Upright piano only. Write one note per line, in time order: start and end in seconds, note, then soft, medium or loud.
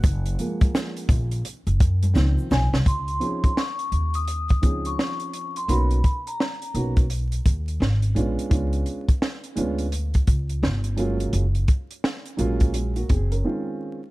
0.00 1.06 F#5 loud
0.38 1.41 F3 medium
0.38 1.41 G#3 medium
0.38 1.41 A#3 medium
2.15 2.66 D#3 medium
2.15 2.66 F3 medium
2.15 2.66 C4 medium
3.20 3.48 F3 medium
3.20 3.48 C4 medium
3.20 3.49 C#4 medium
3.20 3.49 D#4 medium
3.20 3.49 G#4 medium
4.62 5.63 F3 medium
4.62 5.63 C4 medium
4.62 5.64 C#4 medium
4.62 5.64 D#4 medium
4.62 5.64 G#4 medium
5.68 5.96 A#3 medium
5.68 5.96 B3 medium
5.68 5.96 C#4 medium
5.68 5.96 D#4 medium
5.68 5.97 F#4 medium
6.74 7.02 A#3 medium
6.74 7.02 B3 soft
6.74 7.02 C#4 medium
6.74 7.02 D#4 soft
6.74 7.03 F#4 medium
8.15 8.48 G#3 medium
8.15 8.49 B3 medium
8.15 8.49 C#4 medium
8.15 8.50 D4 medium
8.15 8.50 F4 medium
8.49 9.03 G#3 medium
8.49 9.04 B3 medium
8.49 9.04 C#4 medium
8.49 9.04 D4 medium
8.49 9.04 F4 medium
9.55 9.84 G#3 medium
9.55 9.84 B3 medium
9.55 9.84 C#4 medium
9.55 9.84 D4 medium
9.55 9.85 F4 medium
10.96 11.41 F#3 medium
10.96 11.42 G#3 medium
10.96 11.42 A#3 medium
10.96 11.42 C#4 medium
10.96 11.43 F4 medium
12.37 13.39 F#3 medium
12.37 12.73 G#3 medium
12.37 12.74 A#3 medium
12.37 12.74 C#4 medium
12.37 12.73 F4 medium
12.74 12.96 G#3 soft
12.74 12.95 F4 medium
12.96 13.09 A#3 medium
12.96 13.09 F#4 medium
13.09 13.31 C4 medium
13.09 13.30 G#4 medium
13.32 13.44 C#4 soft
13.32 13.65 A#4 medium
13.44 13.97 D#3 medium
13.44 13.98 G#3 medium
13.44 13.98 C4 medium
13.44 13.98 C#4 medium
13.44 13.98 F4 medium